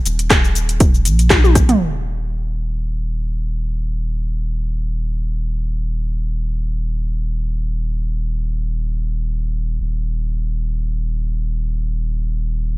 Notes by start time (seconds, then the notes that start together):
0.05 D#1, closed hi-hat, shaker
0.19 closed hi-hat, shaker
0.30 kick, cross-stick, clap, closed hi-hat, shaker
0.44 shaker
0.55 closed hi-hat, shaker
0.69 closed hi-hat, shaker
0.80 kick, closed hi-hat, shaker
0.94 shaker
1.05 A#1, closed hi-hat, shaker
1.19 closed hi-hat, shaker
1.30 kick, cross-stick, clap, closed hi-hat, high tom, shaker
1.44 high tom, shaker
1.55 kick, cross-stick, closed hi-hat, shaker
1.69 closed hi-hat, mid tom, shaker
1.80 D#1
9.81 D#1